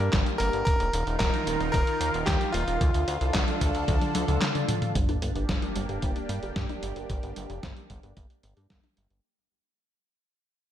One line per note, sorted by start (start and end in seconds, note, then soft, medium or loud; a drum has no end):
0.00 0.63 A#3 medium
0.00 0.63 D4 medium
0.00 0.63 G4 medium
0.00 0.11 A#4 medium
0.00 closed hi-hat soft
0.13 0.23 G1 loud
0.13 kick loud
0.13 snare loud
0.13 clap medium
0.13 closed hi-hat medium
0.26 closed hi-hat soft
0.38 0.50 G1 loud
0.38 0.64 A#4 loud
0.38 closed hi-hat loud
0.53 0.63 G1 medium
0.53 closed hi-hat soft
0.65 0.77 D#1 loud
0.65 2.79 D#3 medium
0.65 2.79 D#4 medium
0.65 4.91 F4 medium
0.65 1.16 A#4 loud
0.65 2.79 A#4 medium
0.65 kick loud
0.65 closed hi-hat medium
0.80 0.90 D#1 medium
0.80 closed hi-hat soft
0.93 1.04 D#1 loud
0.93 closed hi-hat loud
1.07 1.17 D#1 medium
1.07 closed hi-hat soft
1.19 1.30 D#1 loud
1.19 1.70 A#4 loud
1.19 kick loud
1.19 snare loud
1.19 clap loud
1.19 closed hi-hat medium
1.34 closed hi-hat soft
1.47 1.57 D#1 medium
1.47 closed hi-hat medium
1.60 1.71 D#1 medium
1.60 closed hi-hat soft
1.72 1.84 D#1 loud
1.72 2.23 A#4 loud
1.72 kick loud
1.72 closed hi-hat medium
1.87 closed hi-hat soft
2.01 2.11 D#2 loud
2.01 closed hi-hat medium
2.14 2.24 D#1 medium
2.14 closed hi-hat soft
2.26 2.38 D#2 loud
2.26 2.51 G4 medium
2.26 kick loud
2.26 snare loud
2.26 clap loud
2.26 closed hi-hat medium
2.41 closed hi-hat soft
2.52 2.64 D#1 loud
2.52 4.37 F4 loud
2.52 closed hi-hat loud
2.68 2.78 D#1 medium
2.68 closed hi-hat soft
2.81 2.91 D2 loud
2.81 4.93 D3 medium
2.81 4.93 D4 medium
2.81 4.93 A4 medium
2.81 kick loud
2.81 closed hi-hat medium
2.94 3.05 D2 medium
2.94 closed hi-hat soft
3.08 3.18 D2 loud
3.08 closed hi-hat loud
3.21 3.31 C2 medium
3.21 closed hi-hat soft
3.35 3.45 D2 loud
3.35 kick loud
3.35 snare loud
3.35 clap loud
3.35 closed hi-hat medium
3.48 closed hi-hat soft
3.61 3.72 D2 medium
3.61 kick medium
3.61 closed hi-hat loud
3.75 3.85 D2 medium
3.75 closed hi-hat soft
3.88 3.98 D2 loud
3.88 kick loud
3.88 closed hi-hat medium
3.88 high tom medium
4.02 closed hi-hat soft
4.02 high tom medium
4.15 4.25 D2 loud
4.15 closed hi-hat loud
4.15 high tom medium
4.28 4.38 D2 medium
4.28 closed hi-hat soft
4.28 mid tom medium
4.42 snare loud
4.42 clap loud
4.42 closed hi-hat medium
4.42 mid tom medium
4.55 closed hi-hat soft
4.55 mid tom medium
4.69 closed hi-hat loud
4.69 mid tom loud
4.82 closed hi-hat soft
4.82 mid tom medium
4.95 5.06 G1 loud
4.95 5.08 G3 medium
4.95 9.20 A#3 medium
4.95 9.20 D4 medium
4.95 9.20 G4 medium
4.95 kick loud
4.95 closed hi-hat medium
4.95 sub drop medium
5.09 5.19 G1 medium
5.09 5.15 D4 medium
5.09 closed hi-hat soft
5.22 5.32 G1 medium
5.22 5.32 G3 medium
5.22 closed hi-hat medium
5.35 5.46 G1 medium
5.35 5.45 G4 medium
5.35 closed hi-hat soft
5.49 5.59 G1 loud
5.49 5.59 G3 medium
5.49 kick loud
5.49 snare loud
5.49 closed hi-hat medium
5.62 5.72 D4 medium
5.62 closed hi-hat soft
5.76 5.86 G1 medium
5.76 5.88 G3 loud
5.76 closed hi-hat loud
5.89 5.99 G1 medium
5.89 5.99 G4 medium
5.89 closed hi-hat soft
6.02 6.13 G1 loud
6.02 6.15 G3 medium
6.02 kick loud
6.02 closed hi-hat medium
6.16 6.26 D4 medium
6.16 closed hi-hat soft
6.29 6.39 G2 loud
6.29 6.39 G3 medium
6.29 closed hi-hat medium
6.43 6.53 G1 medium
6.43 6.52 G4 medium
6.43 closed hi-hat soft
6.56 6.66 G2 loud
6.56 6.62 G3 medium
6.56 kick loud
6.56 snare loud
6.56 closed hi-hat medium
6.69 6.79 D4 loud
6.69 closed hi-hat soft
6.83 6.93 G1 medium
6.83 6.96 G3 medium
6.83 closed hi-hat medium
6.96 7.06 G1 medium
6.96 7.06 G4 medium
6.96 closed hi-hat soft
7.10 7.20 G1 loud
7.10 7.22 G3 medium
7.10 kick loud
7.10 closed hi-hat medium
7.23 7.33 G1 medium
7.23 7.29 D4 medium
7.23 closed hi-hat soft
7.36 7.47 G1 medium
7.36 7.46 G3 medium
7.36 closed hi-hat medium
7.50 7.60 F1 medium
7.50 7.59 G4 medium
7.50 closed hi-hat soft
7.63 7.73 G1 medium
7.63 7.73 G3 medium
7.63 kick loud
7.63 snare loud
7.63 closed hi-hat medium
7.76 7.86 D4 medium
7.76 closed hi-hat soft
7.90 8.00 G1 medium
7.90 8.03 G3 loud
7.90 kick medium
7.90 closed hi-hat medium
8.03 8.14 G1 medium
8.03 8.13 G4 medium
8.03 closed hi-hat soft
8.17 8.27 G1 loud
8.17 8.29 G3 medium
8.17 kick loud
8.17 closed hi-hat medium
8.30 8.40 D4 medium
8.30 closed hi-hat soft
8.43 8.54 G1 medium
8.43 8.53 G3 medium
8.43 closed hi-hat medium
8.57 8.67 G2 medium
8.57 8.67 G4 medium
8.57 closed hi-hat soft
8.70 8.81 G1 loud
8.70 8.76 G3 medium
8.70 kick loud
8.70 snare loud
8.70 closed hi-hat medium
8.84 8.93 D4 medium
8.84 closed hi-hat soft
8.97 9.07 G1 medium
8.97 9.10 G3 medium
8.97 closed hi-hat medium
9.10 9.21 G1 medium
9.10 9.20 G4 medium
9.10 closed hi-hat soft